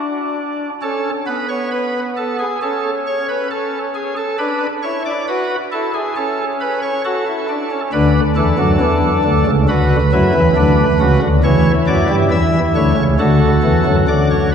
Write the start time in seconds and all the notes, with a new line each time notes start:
Already playing: D4
0.82 C#4 A4
1.27 B3 B4
1.49 C#5
1.72 B4
2.17 A4
2.39 G#4
2.62 C#4 A4
3.07 C#5
3.29 B4
3.51 A4
3.95 G#4
4.17 A4
4.39 D4 B4
4.83 E4 C#5
5.06 D5
5.28 F#4 B4
5.72 E4 A4
5.94 G#4
6.16 C#4 A4
6.61 B4
6.83 C#5
7.05 F#4 A4
7.27 E4
7.49 D4
7.71 C#4
7.93 D2 D3 D4 B4
8.36 E2 E3 A4
8.59 F#2 F#3
8.81 E2 E3
9.24 D2 D3
9.47 C#2 C#3
9.69 D2 D3 F#4 B4
10.12 F#2 F#3 E4
10.35 E2 E3
10.57 D2 D3 D4
11.00 C#2 C#3 F#4
11.22 D2 D3
11.44 E2 E3 E4 C#5
11.87 F#2 F#3 D5
12.09 G2 G3
12.31 E2 E3 E5
12.75 D2 D3 C#5
12.97 C#2 C#3
13.19 D2 D3 F#4 A4
13.63 E2 E3
13.86 F#2 F#3
14.08 D2 D3 D5
14.31 C#5